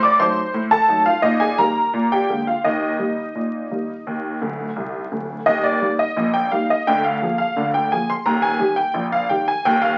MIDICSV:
0, 0, Header, 1, 2, 480
1, 0, Start_track
1, 0, Key_signature, -3, "major"
1, 0, Tempo, 699301
1, 855, Time_signature, 2, 2, 24, 8
1, 6850, End_track
2, 0, Start_track
2, 0, Title_t, "Honky-tonk piano"
2, 0, Program_c, 0, 3
2, 0, Note_on_c, 0, 45, 97
2, 20, Note_on_c, 0, 86, 105
2, 32, Note_on_c, 0, 74, 80
2, 102, Note_off_c, 0, 45, 0
2, 135, Note_on_c, 0, 54, 61
2, 135, Note_on_c, 0, 84, 111
2, 136, Note_on_c, 0, 57, 59
2, 138, Note_off_c, 0, 74, 0
2, 140, Note_off_c, 0, 86, 0
2, 140, Note_on_c, 0, 63, 57
2, 140, Note_on_c, 0, 72, 84
2, 268, Note_off_c, 0, 54, 0
2, 268, Note_off_c, 0, 57, 0
2, 271, Note_off_c, 0, 63, 0
2, 370, Note_on_c, 0, 45, 81
2, 423, Note_off_c, 0, 84, 0
2, 472, Note_off_c, 0, 72, 0
2, 488, Note_on_c, 0, 81, 114
2, 496, Note_on_c, 0, 69, 83
2, 576, Note_off_c, 0, 45, 0
2, 605, Note_on_c, 0, 54, 51
2, 606, Note_on_c, 0, 57, 53
2, 612, Note_on_c, 0, 63, 59
2, 718, Note_off_c, 0, 69, 0
2, 719, Note_off_c, 0, 81, 0
2, 726, Note_on_c, 0, 77, 93
2, 736, Note_on_c, 0, 65, 72
2, 739, Note_off_c, 0, 54, 0
2, 740, Note_off_c, 0, 57, 0
2, 744, Note_off_c, 0, 63, 0
2, 840, Note_on_c, 0, 75, 94
2, 841, Note_on_c, 0, 46, 90
2, 847, Note_off_c, 0, 65, 0
2, 849, Note_on_c, 0, 63, 71
2, 850, Note_off_c, 0, 77, 0
2, 960, Note_on_c, 0, 80, 93
2, 963, Note_off_c, 0, 63, 0
2, 967, Note_off_c, 0, 75, 0
2, 968, Note_on_c, 0, 68, 72
2, 1050, Note_off_c, 0, 46, 0
2, 1082, Note_off_c, 0, 68, 0
2, 1084, Note_on_c, 0, 51, 56
2, 1087, Note_off_c, 0, 80, 0
2, 1087, Note_on_c, 0, 82, 96
2, 1089, Note_on_c, 0, 55, 57
2, 1092, Note_on_c, 0, 70, 65
2, 1094, Note_on_c, 0, 58, 60
2, 1218, Note_off_c, 0, 51, 0
2, 1222, Note_off_c, 0, 55, 0
2, 1226, Note_off_c, 0, 58, 0
2, 1329, Note_on_c, 0, 46, 85
2, 1428, Note_off_c, 0, 70, 0
2, 1433, Note_off_c, 0, 82, 0
2, 1455, Note_on_c, 0, 79, 92
2, 1461, Note_on_c, 0, 67, 70
2, 1536, Note_off_c, 0, 46, 0
2, 1571, Note_on_c, 0, 50, 43
2, 1578, Note_on_c, 0, 56, 47
2, 1578, Note_on_c, 0, 58, 54
2, 1683, Note_off_c, 0, 67, 0
2, 1684, Note_off_c, 0, 79, 0
2, 1698, Note_on_c, 0, 77, 70
2, 1705, Note_off_c, 0, 50, 0
2, 1707, Note_on_c, 0, 65, 50
2, 1710, Note_off_c, 0, 56, 0
2, 1710, Note_off_c, 0, 58, 0
2, 1815, Note_off_c, 0, 65, 0
2, 1815, Note_on_c, 0, 75, 77
2, 1816, Note_on_c, 0, 39, 78
2, 1818, Note_off_c, 0, 77, 0
2, 1823, Note_on_c, 0, 63, 58
2, 2022, Note_off_c, 0, 39, 0
2, 2054, Note_on_c, 0, 51, 42
2, 2055, Note_on_c, 0, 55, 47
2, 2056, Note_on_c, 0, 58, 46
2, 2189, Note_off_c, 0, 51, 0
2, 2189, Note_off_c, 0, 55, 0
2, 2190, Note_off_c, 0, 58, 0
2, 2301, Note_on_c, 0, 46, 60
2, 2507, Note_off_c, 0, 46, 0
2, 2545, Note_on_c, 0, 51, 38
2, 2549, Note_on_c, 0, 58, 41
2, 2551, Note_on_c, 0, 55, 36
2, 2677, Note_off_c, 0, 51, 0
2, 2680, Note_off_c, 0, 58, 0
2, 2682, Note_off_c, 0, 55, 0
2, 2792, Note_on_c, 0, 39, 67
2, 2995, Note_off_c, 0, 39, 0
2, 3030, Note_on_c, 0, 26, 63
2, 3030, Note_on_c, 0, 38, 63
2, 3169, Note_off_c, 0, 75, 0
2, 3209, Note_off_c, 0, 26, 0
2, 3209, Note_off_c, 0, 38, 0
2, 3268, Note_on_c, 0, 36, 59
2, 3449, Note_off_c, 0, 36, 0
2, 3484, Note_off_c, 0, 63, 0
2, 3510, Note_on_c, 0, 38, 58
2, 3511, Note_on_c, 0, 26, 61
2, 3690, Note_off_c, 0, 26, 0
2, 3690, Note_off_c, 0, 38, 0
2, 3748, Note_on_c, 0, 75, 100
2, 3750, Note_on_c, 0, 39, 81
2, 3753, Note_on_c, 0, 27, 69
2, 3868, Note_off_c, 0, 75, 0
2, 3868, Note_on_c, 0, 74, 85
2, 3954, Note_off_c, 0, 39, 0
2, 3955, Note_off_c, 0, 27, 0
2, 3993, Note_on_c, 0, 55, 48
2, 3995, Note_on_c, 0, 58, 52
2, 3998, Note_on_c, 0, 63, 51
2, 4060, Note_off_c, 0, 74, 0
2, 4112, Note_on_c, 0, 75, 85
2, 4123, Note_off_c, 0, 55, 0
2, 4125, Note_off_c, 0, 58, 0
2, 4127, Note_off_c, 0, 63, 0
2, 4231, Note_on_c, 0, 34, 72
2, 4234, Note_on_c, 0, 46, 69
2, 4338, Note_off_c, 0, 75, 0
2, 4349, Note_on_c, 0, 79, 92
2, 4433, Note_off_c, 0, 34, 0
2, 4435, Note_off_c, 0, 46, 0
2, 4468, Note_off_c, 0, 79, 0
2, 4472, Note_on_c, 0, 77, 81
2, 4477, Note_on_c, 0, 55, 47
2, 4478, Note_on_c, 0, 58, 46
2, 4482, Note_on_c, 0, 63, 52
2, 4590, Note_off_c, 0, 77, 0
2, 4601, Note_on_c, 0, 75, 83
2, 4606, Note_off_c, 0, 55, 0
2, 4607, Note_off_c, 0, 58, 0
2, 4610, Note_off_c, 0, 63, 0
2, 4714, Note_off_c, 0, 75, 0
2, 4717, Note_on_c, 0, 79, 101
2, 4719, Note_on_c, 0, 38, 82
2, 4719, Note_on_c, 0, 50, 77
2, 4832, Note_off_c, 0, 79, 0
2, 4835, Note_on_c, 0, 77, 75
2, 4917, Note_off_c, 0, 38, 0
2, 4917, Note_off_c, 0, 50, 0
2, 4956, Note_on_c, 0, 53, 53
2, 4962, Note_on_c, 0, 68, 57
2, 4964, Note_on_c, 0, 58, 48
2, 5057, Note_off_c, 0, 77, 0
2, 5067, Note_on_c, 0, 77, 89
2, 5085, Note_off_c, 0, 53, 0
2, 5089, Note_off_c, 0, 68, 0
2, 5091, Note_off_c, 0, 58, 0
2, 5191, Note_on_c, 0, 38, 66
2, 5194, Note_on_c, 0, 50, 75
2, 5258, Note_off_c, 0, 77, 0
2, 5314, Note_on_c, 0, 79, 88
2, 5391, Note_off_c, 0, 38, 0
2, 5393, Note_off_c, 0, 50, 0
2, 5429, Note_off_c, 0, 79, 0
2, 5437, Note_on_c, 0, 80, 89
2, 5439, Note_on_c, 0, 58, 49
2, 5440, Note_on_c, 0, 53, 46
2, 5443, Note_on_c, 0, 68, 54
2, 5550, Note_off_c, 0, 80, 0
2, 5558, Note_on_c, 0, 84, 95
2, 5567, Note_off_c, 0, 53, 0
2, 5567, Note_off_c, 0, 58, 0
2, 5569, Note_off_c, 0, 68, 0
2, 5667, Note_on_c, 0, 82, 86
2, 5668, Note_on_c, 0, 39, 83
2, 5670, Note_off_c, 0, 84, 0
2, 5670, Note_on_c, 0, 27, 76
2, 5781, Note_on_c, 0, 80, 92
2, 5785, Note_off_c, 0, 82, 0
2, 5870, Note_off_c, 0, 39, 0
2, 5871, Note_off_c, 0, 27, 0
2, 5899, Note_on_c, 0, 51, 48
2, 5902, Note_on_c, 0, 55, 49
2, 5909, Note_on_c, 0, 67, 59
2, 6010, Note_off_c, 0, 80, 0
2, 6014, Note_on_c, 0, 79, 89
2, 6032, Note_off_c, 0, 51, 0
2, 6034, Note_off_c, 0, 55, 0
2, 6039, Note_off_c, 0, 67, 0
2, 6135, Note_on_c, 0, 34, 72
2, 6136, Note_on_c, 0, 46, 69
2, 6209, Note_off_c, 0, 79, 0
2, 6263, Note_on_c, 0, 77, 93
2, 6342, Note_off_c, 0, 34, 0
2, 6342, Note_off_c, 0, 46, 0
2, 6380, Note_on_c, 0, 79, 85
2, 6382, Note_off_c, 0, 77, 0
2, 6384, Note_on_c, 0, 51, 51
2, 6384, Note_on_c, 0, 55, 41
2, 6390, Note_on_c, 0, 67, 50
2, 6500, Note_off_c, 0, 79, 0
2, 6506, Note_on_c, 0, 80, 93
2, 6515, Note_off_c, 0, 51, 0
2, 6515, Note_off_c, 0, 55, 0
2, 6519, Note_off_c, 0, 67, 0
2, 6623, Note_off_c, 0, 80, 0
2, 6626, Note_on_c, 0, 79, 100
2, 6627, Note_on_c, 0, 39, 86
2, 6629, Note_on_c, 0, 27, 73
2, 6738, Note_on_c, 0, 77, 91
2, 6742, Note_off_c, 0, 79, 0
2, 6827, Note_off_c, 0, 39, 0
2, 6828, Note_off_c, 0, 27, 0
2, 6850, Note_off_c, 0, 77, 0
2, 6850, End_track
0, 0, End_of_file